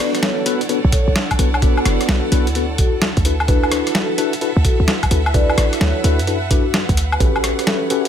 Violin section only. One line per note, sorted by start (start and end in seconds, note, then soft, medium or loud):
0.00 7.16 A4 medium
0.00 3.21 C#5 medium
0.00 3.21 D5 medium
0.00 3.22 F#5 medium
3.25 8.08 B4 medium
3.25 7.16 E5 medium
3.25 8.08 F#5 medium
7.21 8.08 C#5 medium